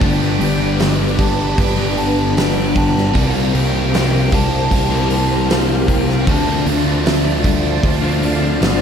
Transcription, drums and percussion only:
0.01 kick, open hi-hat
0.41 open hi-hat
0.79 snare, open hi-hat
1.19 kick, open hi-hat
1.58 kick, open hi-hat
1.97 open hi-hat
2.37 snare, open hi-hat
2.76 kick, open hi-hat
2.98 snare
3.15 kick, open hi-hat
3.55 open hi-hat
3.94 snare, open hi-hat
4.32 kick, open hi-hat
4.71 kick, open hi-hat
5.10 open hi-hat
5.50 snare, open hi-hat
5.88 kick, open hi-hat
6.09 snare
6.27 kick, open hi-hat
6.66 open hi-hat
7.06 snare, open hi-hat
7.44 kick, open hi-hat
7.83 kick, open hi-hat
8.23 open hi-hat
8.62 snare, open hi-hat

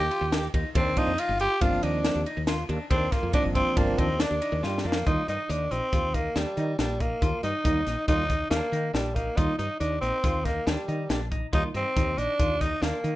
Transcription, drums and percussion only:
0.11 ride
0.32 snare, ride
0.54 kick, ride
0.75 kick, ride
0.97 kick, ride
1.18 ride
1.40 ride
1.61 kick, ride
1.83 ride
2.04 snare, ride
2.26 ride
2.47 snare, ride
2.69 ride
2.91 kick, ride
3.12 kick, snare, ride
3.33 kick, ride
3.55 kick, ride
3.77 kick, ride
3.99 kick, ride
4.20 snare, ride
4.42 ride
4.63 snare
4.78 snare
4.92 snare
5.07 kick, closed hi-hat
5.28 closed hi-hat
5.50 closed hi-hat
5.71 closed hi-hat
5.93 kick, closed hi-hat
6.14 kick, closed hi-hat
6.36 snare, closed hi-hat
6.57 closed hi-hat
6.79 snare, closed hi-hat
7.00 kick, closed hi-hat
7.22 kick, closed hi-hat
7.43 closed hi-hat
7.65 kick, closed hi-hat
7.87 snare, closed hi-hat
8.08 kick, closed hi-hat
8.30 kick, closed hi-hat
8.51 snare, closed hi-hat
8.73 closed hi-hat
8.95 snare, closed hi-hat
9.16 kick, closed hi-hat
9.38 kick, closed hi-hat
9.59 closed hi-hat
9.81 closed hi-hat
10.03 closed hi-hat
10.24 kick, closed hi-hat
10.45 kick, snare, closed hi-hat
10.67 snare, closed hi-hat
10.89 closed hi-hat
11.10 snare, closed hi-hat
11.32 kick, closed hi-hat
11.53 kick, closed hi-hat
11.75 closed hi-hat
11.97 kick, closed hi-hat
12.18 closed hi-hat
12.39 kick, closed hi-hat
12.61 kick, snare, closed hi-hat
12.83 snare, closed hi-hat
13.04 closed hi-hat

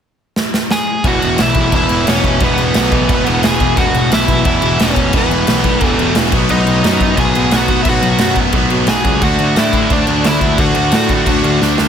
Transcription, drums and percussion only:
0.36 snare
0.54 snare
0.71 snare
1.04 kick, crash
1.22 crash
1.38 snare, crash
1.55 kick, crash
1.72 kick, crash
1.89 crash
2.07 snare, crash
2.24 kick, crash
2.40 kick, crash
2.58 crash
2.74 snare, crash
2.92 kick, crash
3.09 kick, crash
3.27 crash
3.43 snare, crash
3.60 kick, crash
3.77 kick, crash
3.94 crash
4.12 snare, crash
4.28 kick, crash
4.45 kick, crash
4.62 crash
4.79 snare, crash
4.96 kick, crash
5.13 kick, crash
5.31 crash
5.47 snare, crash
5.64 kick, crash
5.81 kick, crash
5.99 crash
6.15 snare, crash
6.32 kick, crash
6.49 crash
6.67 crash
6.84 snare, crash
7.00 kick, crash
7.17 kick, crash
7.35 crash
7.51 snare, crash
7.68 kick, crash
7.85 kick, crash
8.03 crash
8.18 snare, crash
8.35 kick, crash
8.53 kick, crash
8.70 crash
8.87 snare, crash
9.05 kick, crash
9.22 kick, crash
9.39 crash
9.56 snare, crash
9.73 kick, crash
9.90 kick, crash
10.07 crash
10.24 snare, crash
10.41 kick, crash
10.58 kick, crash
10.75 crash
10.92 snare, crash
11.09 kick, crash
11.26 kick, crash
11.44 crash
11.62 snare
11.78 snare

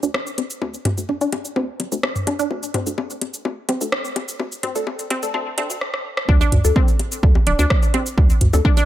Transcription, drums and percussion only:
0.03 shaker
0.14 cross-stick, low bongo
0.27 shaker
0.38 closed hi-hat, low bongo
0.50 shaker
0.62 low bongo
0.74 shaker
0.85 closed hi-hat, mid tom, low bongo
0.98 shaker
1.09 low bongo
1.21 closed hi-hat, shaker
1.32 closed hi-hat, low bongo
1.45 shaker
1.56 low bongo
1.80 closed hi-hat, low bongo
1.92 shaker
2.03 cross-stick, low bongo
2.16 mid tom, shaker
2.27 closed hi-hat, low bongo
2.39 shaker
2.51 low bongo
2.63 shaker
2.74 closed hi-hat, mid tom, low bongo
2.87 shaker
2.98 low bongo
3.10 shaker
3.21 closed hi-hat, low bongo
3.34 shaker
3.45 low bongo
3.69 closed hi-hat, low bongo
3.81 shaker
3.92 cross-stick, low bongo
4.05 shaker
4.16 closed hi-hat, low bongo
4.28 shaker
4.40 low bongo
4.52 shaker
4.63 closed hi-hat, mid tom, low bongo
4.76 shaker
4.87 low bongo
4.99 closed hi-hat, shaker
5.10 closed hi-hat, low bongo
5.23 shaker
5.34 low bongo
5.58 closed hi-hat, low bongo
5.70 shaker
5.81 cross-stick
5.94 cross-stick
6.17 cross-stick
6.29 kick
6.41 low bongo, shaker
6.52 closed hi-hat, mid tom
6.64 shaker
6.76 kick, low bongo
6.88 shaker
6.99 closed hi-hat, low bongo
7.12 shaker
7.23 kick
7.35 low bongo
7.47 closed hi-hat
7.59 low bongo, shaker
7.70 kick, cross-stick
7.83 shaker
7.94 closed hi-hat, low bongo
8.06 shaker
8.18 kick, low bongo
8.30 shaker
8.41 closed hi-hat, mid tom
8.53 low bongo, shaker
8.65 kick
8.77 closed hi-hat, low bongo, shaker

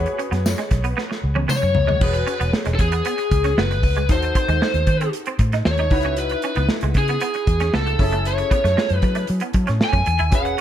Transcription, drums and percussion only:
0.06 closed hi-hat
0.19 closed hi-hat
0.33 snare, closed hi-hat
0.46 snare, tambourine
0.58 snare, closed hi-hat
0.71 kick, snare, closed hi-hat
0.84 closed hi-hat
0.98 snare
1.12 snare
1.36 high tom
1.49 mid tom, tambourine
1.75 floor tom
1.89 floor tom
2.01 kick, crash
2.14 closed hi-hat
2.27 closed hi-hat
2.41 closed hi-hat
2.53 snare
2.65 snare, closed hi-hat
2.79 kick, closed hi-hat
2.92 closed hi-hat
3.05 closed hi-hat
3.18 closed hi-hat
3.31 kick, closed hi-hat
3.44 snare, closed hi-hat
3.58 snare
3.71 closed hi-hat
3.83 kick, open hi-hat
3.96 closed hi-hat
4.09 kick, closed hi-hat
4.22 closed hi-hat
4.35 kick, closed hi-hat
4.48 closed hi-hat
4.62 snare
4.74 closed hi-hat
4.87 kick, closed hi-hat
5.01 closed hi-hat
5.13 closed hi-hat
5.26 closed hi-hat
5.39 kick, closed hi-hat
5.52 snare, closed hi-hat
5.65 snare
5.78 closed hi-hat
5.90 kick, open hi-hat
6.03 closed hi-hat
6.16 closed hi-hat
6.29 closed hi-hat
6.42 closed hi-hat
6.55 closed hi-hat
6.69 snare
6.81 closed hi-hat
6.94 kick, closed hi-hat
7.08 closed hi-hat
7.20 closed hi-hat
7.34 closed hi-hat
7.47 kick, closed hi-hat
7.60 snare, closed hi-hat
7.74 snare
7.87 closed hi-hat
7.99 kick, open hi-hat
8.12 closed hi-hat
8.25 closed hi-hat
8.38 closed hi-hat
8.51 kick, closed hi-hat
8.65 snare, closed hi-hat
8.78 snare
8.90 closed hi-hat
9.02 kick, closed hi-hat
9.15 closed hi-hat
9.27 closed hi-hat
9.40 closed hi-hat
9.53 kick, closed hi-hat
9.67 snare, closed hi-hat
9.81 snare
9.93 kick, closed hi-hat
10.06 closed hi-hat
10.19 closed hi-hat
10.32 kick, closed hi-hat
10.45 closed hi-hat

